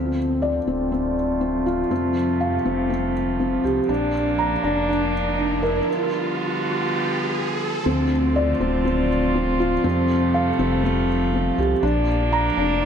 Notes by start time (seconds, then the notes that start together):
Already playing: D2 D3 F3 A3 C4 F4, riser
0.42 D5
0.67 D1 C4
0.92 C4
1.41 C4
1.66 F4
1.91 F2 C3 G3 C4
2.40 F5
2.65 F1 C4
2.90 C4
3.40 C4
3.64 C2 G4
3.89 A#1 A#3 D4
4.38 A#5
4.63 F1 D4
4.88 D4
5.38 D4
5.63 A#4
5.88 D3 G3 B3 F4
7.86 D2 D3 F3 A3 C4 F4
8.36 D5
8.60 D1 C4
8.85 C4
9.35 C4
9.60 F4
9.83 F2 C3 G3 A3 C4
10.34 F5
10.59 F1 C4
10.84 C4
11.34 C4
11.58 C2 G4
11.83 A#1 A#3 D4
12.32 A#5
12.57 F1 D4
12.82 D4